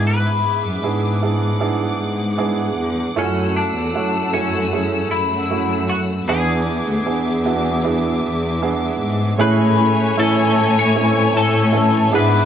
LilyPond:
<<
  \new Staff \with { instrumentName = "String section" } { \time 4/4 \key a \major \tempo 4 = 77 << { <gis' d'''>1 | <a e'''>1 | <gis' d'''>1 | <cis'' cis'''>2.~ <cis'' cis'''>8 <gis' d'''>8 | } \\ { e''4. fis''2~ fis''8~ | fis''1 | e''1 | gis''2.~ gis''8 e''8 | } >> }
  \new Staff \with { instrumentName = "Violin section" } { \time 4/4 \key a \major r1 | r1 | r1 | <e' cis'' gis''>2.~ <e' cis'' gis''>8 <b gis' e''>8 | }
  \new Staff \with { instrumentName = "Clean electric guitar" } { \time 4/4 \key a \major b'2 r2 | cis'8 d'4 cis'4 e'4 fis'8 | gis'2. r4 | b'4 a'8. cis''8. a'4 b'8 | }
  \new Staff \with { instrumentName = "Grand piano" } { \time 4/4 \key a \major <b d' e' gis'>4 <b d' e' gis'>8 <b d' e' gis'>8 <b d' e' gis'>4 <b d' e' gis'>4 | <a e' f' fis' cis''>4 <a e' fis' cis''>8 <a cis' e' fis'>8 <a cis' e' gis'>4 <a cis' e' fis'>4 | <b d' e' gis'>4 <b d' e' gis'>8 <b d' e' fis'>8 <b d' e' gis'>4 <b d' e' gis'>4 | <a cis' e' gis'>4 <a cis' e' a'>4 <a c' cis' e'>4 <a cis' e' a'>8 <b d' e' gis'>8 | }
  \new Staff \with { instrumentName = "Grand piano" } { \clef bass \time 4/4 \key a \major gis,4 r2. | r1 | e4. r2 r8 | a,4. r2 gis,8 | }
  \new Staff \with { instrumentName = "Nylon-string guitar" } { \time 4/4 \key a \major r1 | r1 | r1 | <a, e gis cis' e'>8 <gis cis' e'>8 <a, e cis' e'>4 <e gis cis' e'>8 <cis' e'>8 <a, e cis' e'>8 <b d' e'>8 | }
  \new Staff \with { instrumentName = "Cello section" } { \clef bass \time 4/4 \key a \major gis,8 r16 fis,16 gis,4. gis,4 e,8 | fis,8. e,16 fis,4. fis,4. | e,8. d,16 e,4. e,4 gis,8 | a,4 a,4. a,4 gis,8 | }
>>